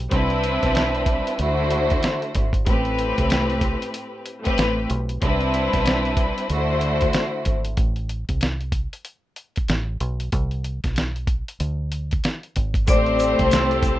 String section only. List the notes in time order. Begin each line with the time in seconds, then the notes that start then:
0.11 G3 C4 D4 E4 B4
1.42 D3 A3 E4 F#4 C5
2.67 A2 A3 C4 G4 B4
4.44 A2 A3 C4 G4 B4
5.22 G3 C4 D4 E4 B4
6.52 D3 A3 E4 F#4 C5
12.88 A2 A3 C4 G4 C5